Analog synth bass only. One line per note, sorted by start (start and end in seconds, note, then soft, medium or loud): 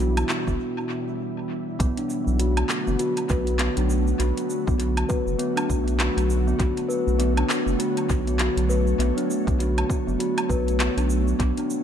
0.00 0.24 B1 loud
0.47 0.56 F#1 medium
1.80 1.93 B1 medium
2.27 2.64 B1 loud
2.87 2.96 F#1 medium
3.30 3.70 B1 medium
3.77 4.14 B1 loud
4.20 4.32 B1 loud
4.67 5.04 B1 loud
5.27 5.36 F#1 medium
5.70 6.10 B1 medium
6.17 6.54 B1 loud
6.59 6.72 B1 loud
7.07 7.44 B1 loud
7.67 7.76 F#1 medium
8.10 8.50 B1 medium
8.57 8.94 B1 loud
8.99 9.12 B1 loud
9.47 9.84 B1 loud
10.08 10.16 F#1 medium
10.50 10.90 B1 medium
10.97 11.34 B1 medium
11.39 11.52 B1 loud